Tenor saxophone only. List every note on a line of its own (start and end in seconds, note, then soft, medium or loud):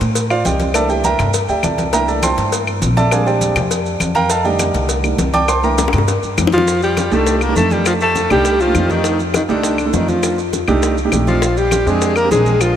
6.54 6.81 F3 medium
6.83 7.14 G3 medium
7.13 7.37 A3 medium
7.37 7.43 A3 medium
7.42 7.56 A#3 medium
7.57 7.73 A3 medium
7.71 7.86 G3 medium
7.87 7.93 F3 medium
8.01 8.29 A3 medium
8.31 8.63 G3 medium
8.61 8.92 F3 medium
8.91 9.20 D#3 medium
9.36 9.42 D#3 medium
9.50 9.96 D3 medium
9.94 10.10 D#3 medium
10.09 10.38 F3 medium
11.28 11.58 F3 medium
11.57 11.88 G3 medium
11.87 12.18 G#3 medium
12.17 12.31 A#3 medium
12.31 12.62 G#3 medium
12.61 12.76 F3 medium